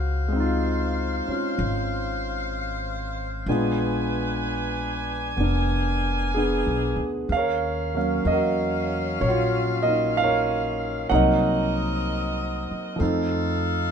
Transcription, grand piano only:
Already playing: F#4
0.28 G#3
0.32 C4 D#4
0.40 F4
1.28 C#4 F4
3.48 G#3 B3 D4 F4
5.37 B3 D4
6.34 B3 D4 G#4
7.32 F5
7.37 A#4 C#5
7.95 F#3 A#3 C#4 F5
8.27 D#5
8.32 F#4 A#4
9.21 C#5
9.28 F4 F#4
9.83 A#3 D#5
9.88 D#4
10.17 F5
10.24 A#4 C#5
11.09 F#3 A#3 C4 D#4 F#5
11.14 A#4 D#5
12.96 F3 A3
13.00 C4 D#4

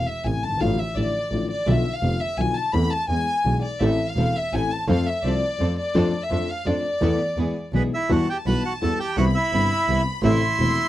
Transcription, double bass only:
0.25 A1
0.43 G1
0.60 A1
0.96 A1
1.31 A1
1.67 B1
2.03 F1
2.38 B1
2.73 E2
3.09 E2
3.45 B1
3.81 A1
4.16 E1
4.53 A1
4.88 F2
5.23 C2
5.59 F2
5.95 F2
6.30 F2
6.66 F2
7.01 E2
7.37 E2
7.72 B1
8.10 E2
8.46 B1
8.82 E2
9.17 C2
9.53 G1
9.88 C2
10.23 A1
10.60 E1

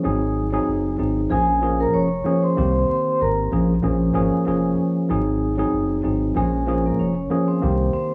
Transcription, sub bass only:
0.05 G#1
0.68 F#1
0.99 G#1
1.31 A#1
1.94 F1
2.58 C2
3.21 G#1
3.52 A#1
3.84 A#1
4.15 G#1
4.47 F1
5.10 G#1
5.73 F#1
6.05 G#1
6.36 A#1
6.99 F1
7.63 C2

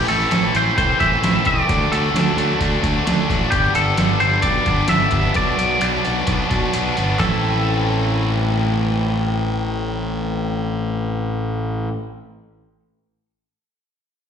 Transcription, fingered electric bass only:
0.10 A1
0.32 A1
0.55 A1
0.78 C2
1.01 A1
1.23 A1
1.46 C2
1.70 D2
1.92 D2
2.14 D2
2.37 D2
2.61 D2
2.83 D2
3.07 D2
3.30 A1
3.52 G1
3.76 G1
3.99 G1
4.22 G1
4.44 B1
4.66 G1
4.90 G1
5.13 G1
5.36 B1
5.60 B1
5.82 B1
6.07 B1
6.28 B1
6.51 B1
6.76 B1
6.98 G1
7.20 A1

